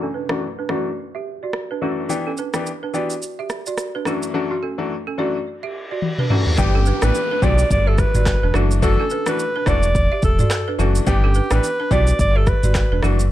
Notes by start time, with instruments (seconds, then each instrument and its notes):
Already playing: downlifter
0.02 balafon C#4 A4
0.14 balafon D4 B4
0.29 grand piano F#2 E3 A3 D4 F#4, cross-stick
0.59 balafon D4 B4
0.69 grand piano F#2 E3 A3 D4 F#4, balafon F#4 D5, cross-stick
1.15 balafon G4 E5
1.43 balafon F#4 D5
1.53 cross-stick
1.71 balafon D4 B4
1.81 grand piano F#2 E3 A3 D4 F#4, balafon C#4 A4
2.09 grand piano E3 B3 D4 G4, shaker
2.27 balafon C#4 A4
2.37 balafon D4 B4, shaker
2.54 grand piano E3 B3 D4 G4, cross-stick, shaker
2.66 shaker
2.83 balafon D4 B4
2.94 grand piano E3 B3 D4 G4, balafon F#4 D5, shaker
3.10 shaker
3.22 shaker
3.39 balafon G4 E5
3.50 cross-stick, shaker
3.66 balafon F#4 D5, shaker
3.78 cross-stick, shaker
3.95 balafon D4 B4
4.05 grand piano F#2 E3 A3 D4 F#4, balafon D4 A4, cross-stick, shaker
4.23 shaker
4.34 grand piano F#2 E3 A3 D4 F#4
4.51 balafon A3 F#4
4.63 balafon C#4 A4
4.78 grand piano F#2 E3 A3 D4 F#4
5.07 balafon C#4 A4
5.18 grand piano F#2 E3 A3 D4 F#4, balafon F#4 D5
5.46 reverse cymbal
5.63 balafon G4 E5
5.91 balafon F#4 D5
6.02 high tom
6.18 balafon D4 B4, mid tom
6.30 grand piano F#2 E3 A3 D4 F#4, balafon C#4 A4, mid tom
6.46 floor tom
6.58 sub bass G1, grand piano E3 B3 D4 G4, alto saxophone G4, kick, downlifter, shaker
6.75 balafon C#4 A4
6.86 balafon D4 B4, shaker
7.02 sub bass A1, grand piano E3 B3 D4 G4, alto saxophone B4, cross-stick, shaker
7.15 shaker
7.31 balafon D4 B4
7.42 sub bass B1, grand piano E3 B3 D4 G4, balafon F#4 D5, alto saxophone D5, kick, shaker
7.58 shaker
7.71 sub bass G1, alto saxophone D5, kick, shaker
7.87 balafon G4 E5, alto saxophone A4
7.98 alto saxophone B4, kick, cross-stick, shaker
8.15 sub bass G1, balafon F#4 D5, mid tom, shaker
8.26 kick, cross-stick, clap, shaker
8.43 sub bass E1, balafon D4 B4
8.54 sub bass F#1, grand piano E3 A3 D4 F#4, balafon D4 A4, cross-stick, shaker
8.71 shaker
8.82 grand piano E3 A3 D4 F#4, alto saxophone A4, kick, shaker
9.00 balafon C#4 A4
9.10 balafon D4 B4, shaker
9.26 grand piano E3 A3 D4 F#4, alto saxophone B4, cross-stick, shaker
9.39 shaker
9.56 balafon D4 B4
9.66 sub bass E1, grand piano E3 A3 D4 F#4, balafon F#4 D5, alto saxophone D5, kick, cross-stick, shaker
9.83 shaker
9.95 kick, shaker
10.12 balafon G4 E5
10.23 sub bass E1, alto saxophone A4, kick, shaker
10.39 balafon F#4 D5, mid tom, shaker
10.50 cross-stick, clap, shaker
10.68 balafon D4 B4
10.79 sub bass F#1, grand piano E3 A3 D4 F#4, balafon C#4 A4, shaker
10.95 shaker
11.07 sub bass G1, grand piano E3 B3 D4 G4, alto saxophone G4, kick, shaker
11.24 balafon C#4 A4
11.34 balafon D4 B4, shaker
11.51 sub bass A1, grand piano E3 B3 D4 G4, alto saxophone B4, cross-stick, shaker
11.63 shaker
11.80 balafon D4 B4
11.91 sub bass B1, grand piano E3 B3 D4 G4, balafon F#4 D5, alto saxophone D5, kick, shaker
12.07 shaker
12.19 sub bass G1, alto saxophone D5, kick, shaker
12.36 balafon G4 E5, alto saxophone A4
12.47 alto saxophone B4, kick, cross-stick, shaker
12.63 sub bass G1, balafon F#4 D5, mid tom, shaker
12.75 kick, cross-stick, clap, shaker
12.91 sub bass E1, balafon D4 B4
13.03 sub bass F#1, grand piano E3 A3 D4 F#4, balafon D4 A4, cross-stick, shaker
13.20 shaker